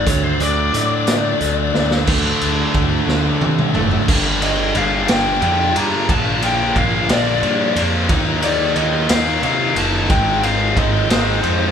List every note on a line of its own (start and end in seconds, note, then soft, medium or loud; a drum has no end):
0.06 0.36 D2 loud
0.06 0.38 D3 medium
0.06 0.39 F#3 medium
0.06 0.40 A3 medium
0.06 0.40 D4 loud
0.06 0.23 C#5 medium
0.06 kick loud
0.06 closed hi-hat loud
0.24 0.41 C5 loud
0.40 0.70 D2 medium
0.40 0.72 D3 medium
0.40 0.72 F#3 loud
0.40 0.73 A3 medium
0.40 0.73 D4 loud
0.40 2.04 D5 loud
0.40 closed hi-hat medium
0.73 1.33 A2 medium
0.73 1.05 D3 medium
0.73 1.06 F#3 medium
0.73 1.06 A3 medium
0.73 1.07 D4 medium
0.73 closed hi-hat medium
1.06 1.39 D3 medium
1.06 1.40 F#3 medium
1.06 1.40 A3 loud
1.06 1.40 D4 loud
1.06 snare loud
1.06 closed hi-hat medium
1.40 1.70 D2 medium
1.40 1.73 D3 loud
1.40 1.74 F#3 medium
1.40 1.74 A3 loud
1.40 1.74 D4 medium
1.40 closed hi-hat medium
1.74 2.04 D2 medium
1.74 2.06 D3 medium
1.74 2.06 F#3 medium
1.74 2.06 A3 medium
1.74 2.06 D4 medium
1.74 snare medium
1.91 snare medium
2.07 2.29 D2 loud
2.07 4.06 D3 medium
2.07 4.07 F#3 medium
2.07 4.07 A3 medium
2.07 4.07 D4 medium
2.07 kick loud
2.07 crash loud
2.41 2.63 D2 medium
2.41 ride medium
2.74 2.96 D2 medium
2.74 kick medium
2.74 ride medium
3.07 3.29 D2 medium
3.07 4.08 D3 medium
3.07 4.07 A3 medium
3.07 4.06 D4 medium
3.07 snare medium
3.41 3.62 C3 medium
3.41 high tom medium
3.59 mid tom medium
3.74 3.96 F#1 medium
3.74 4.07 D3 medium
3.74 4.07 A3 medium
3.74 4.06 D4 medium
3.74 mid tom loud
3.91 floor tom medium
4.07 4.72 G1 loud
4.07 4.75 G2 loud
4.07 4.73 D3 loud
4.07 4.42 G3 medium
4.07 4.42 A#3 medium
4.07 4.40 D4 loud
4.07 kick loud
4.07 crash loud
4.41 4.74 G2 medium
4.41 4.75 D3 medium
4.41 4.74 G3 medium
4.41 4.75 A#3 medium
4.41 4.76 D4 medium
4.41 4.74 D#5 medium
4.41 ride medium
4.74 5.05 G1 medium
4.74 5.07 G2 medium
4.74 5.40 D3 medium
4.74 5.09 G3 medium
4.74 5.09 A#3 medium
4.74 5.06 D4 medium
4.74 5.09 F5 medium
4.74 ride medium
5.07 5.39 G1 medium
5.07 5.41 G2 medium
5.07 5.41 D3 loud
5.07 5.41 G3 medium
5.07 5.42 A#3 medium
5.07 5.42 D4 medium
5.07 5.41 G5 loud
5.07 snare loud
5.07 ride loud
5.41 5.72 F2 loud
5.41 5.74 G2 medium
5.41 6.07 D3 medium
5.41 5.75 G3 medium
5.41 5.75 A#3 medium
5.41 5.73 D4 medium
5.41 5.77 G5 loud
5.41 ride medium
5.74 6.07 G2 medium
5.74 6.11 G2 medium
5.74 6.07 D3 loud
5.74 6.08 G3 medium
5.74 6.10 A#3 medium
5.74 6.06 D4 medium
5.74 6.09 A#5 loud
5.74 ride medium
6.08 6.72 A#1 loud
6.08 6.76 A#2 medium
6.08 6.74 D3 medium
6.08 6.43 F3 loud
6.08 6.42 A#3 loud
6.08 6.40 D4 loud
6.08 6.44 A5 loud
6.08 kick loud
6.08 ride loud
6.41 6.74 A#2 medium
6.41 6.75 F3 medium
6.41 6.76 A#3 medium
6.41 6.76 D4 medium
6.41 6.74 G5 medium
6.41 ride medium
6.75 7.06 A#1 medium
6.75 7.08 A#2 medium
6.75 7.40 D3 medium
6.75 7.10 F3 medium
6.75 7.09 A#3 medium
6.75 7.08 D4 medium
6.75 7.08 F5 loud
6.75 kick medium
6.75 ride medium
7.09 7.39 A#1 loud
7.09 7.42 A#2 medium
7.09 7.41 F3 medium
7.09 7.42 A#3 medium
7.09 7.42 D4 medium
7.09 7.81 D5 medium
7.09 snare loud
7.09 ride loud
7.42 7.73 G2 medium
7.42 7.75 A#2 medium
7.42 8.07 D3 medium
7.42 7.77 F3 medium
7.42 7.76 A#3 medium
7.42 7.74 D4 medium
7.42 ride medium
7.75 8.06 F2 medium
7.75 8.08 A#2 medium
7.75 8.08 F3 medium
7.75 8.08 A#3 medium
7.75 8.07 D4 medium
7.75 ride medium
8.09 8.72 D#2 loud
8.09 8.74 D#3 medium
8.09 8.43 F#3 medium
8.09 8.42 A#3 loud
8.09 8.42 D#4 loud
8.09 kick loud
8.09 ride loud
8.42 8.75 D#3 medium
8.42 8.75 F#3 medium
8.42 8.76 A#3 medium
8.42 8.78 D#4 medium
8.42 8.75 D5 medium
8.42 ride medium
8.75 9.06 D#2 medium
8.75 9.41 D#3 medium
8.75 9.10 F#3 medium
8.75 9.09 A#3 medium
8.75 9.08 D#4 medium
8.75 9.10 D#5 medium
8.75 ride medium
9.09 9.40 D#2 medium
9.09 9.42 D#3 medium
9.09 9.42 F#3 medium
9.09 9.42 A#3 medium
9.09 9.43 D#4 medium
9.09 9.41 F5 loud
9.09 snare loud
9.09 ride loud
9.42 9.73 C3 loud
9.42 10.07 D#3 medium
9.42 9.77 F#3 medium
9.42 9.76 A#3 medium
9.42 9.75 D#4 medium
9.42 9.78 F5 medium
9.42 ride medium
9.76 10.06 F#1 medium
9.76 10.08 D#3 medium
9.76 10.09 F#3 medium
9.76 10.08 A#3 medium
9.76 10.07 D#4 medium
9.76 10.08 A5 loud
9.76 ride medium
10.09 10.73 G#1 medium
10.09 10.76 G#2 medium
10.09 10.74 D#3 loud
10.09 10.44 G#3 medium
10.09 10.42 C4 medium
10.09 10.41 D#4 medium
10.09 10.43 G5 loud
10.09 kick loud
10.09 ride loud
10.42 10.74 G#2 loud
10.42 10.75 D#3 medium
10.42 10.75 G#3 medium
10.42 10.76 C4 medium
10.42 10.77 D#4 medium
10.42 10.78 F5 medium
10.42 ride medium
10.76 11.06 G#1 medium
10.76 11.08 G#2 medium
10.76 11.41 D#3 medium
10.76 11.10 G#3 medium
10.76 11.09 C4 medium
10.76 11.08 D#4 medium
10.76 11.08 D#5 medium
10.76 kick medium
10.76 ride medium
11.09 11.40 G#1 medium
11.09 11.41 G#2 medium
11.09 11.41 D#3 medium
11.09 11.42 G#3 medium
11.09 11.43 C4 medium
11.09 11.44 D#4 medium
11.09 11.71 C5 medium
11.09 snare loud
11.09 ride loud
11.42 11.71 F2 medium
11.42 11.71 G#2 medium
11.42 11.71 D#3 medium
11.42 11.71 G#3 medium
11.42 11.71 C4 medium
11.42 11.71 D#4 medium
11.42 ride medium